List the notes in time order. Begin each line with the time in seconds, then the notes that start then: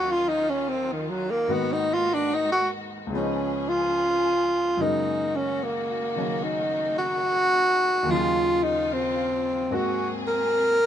Already playing: D#2 D#3 F#3 C#4 F4 F#4
0.11 F4
0.29 D#4
0.50 C#4
0.69 C4
0.92 D#3
1.09 F#3
1.31 A#3
1.47 G#2 D#3 G#3 A#3 B3 F#4
1.52 B3
1.73 D#4
1.94 F4
2.14 D4
2.34 D#4
2.52 F#4
3.07 C#2 C#3
3.13 F3 B3 C#4 G#4
3.18 D#4
3.69 F4
4.77 F#2 C#3 D#3 G#3 A#3 F#4
4.82 D#4
5.36 C#4
5.63 A#3
6.16 C#3 D#3 F#3 C#4
6.43 D#4
6.98 F#4
8.03 D#2 D#3
8.09 C#3 F#3 F4
8.15 F4
8.63 D#4
8.93 C4
9.70 G#2 G#3 A#3 C4 F#4 G#4
9.75 A#3 F#4
10.27 A#4